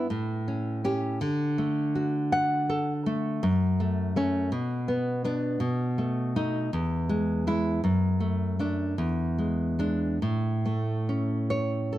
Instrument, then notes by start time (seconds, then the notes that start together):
nylon-string guitar
0.10 A2
0.48 C#4
0.84 C#4 G4
1.21 D3
1.58 A3
1.95 F#4
2.32 F#5
2.69 A4
3.06 A3
3.43 F#2
3.80 A3
4.16 A3 C#4
4.52 B2
4.88 B3
5.24 B3 D4
5.60 B2
5.98 A3
6.36 A3 D#4
6.73 E2
7.09 G#3
7.47 G#3 E4
7.84 F#2
8.20 A3
8.59 A3 D4
8.98 E2
9.38 G#3
9.79 G#3 D4
10.22 A2
10.66 A3
11.09 C#4
11.50 C#5
11.93 A4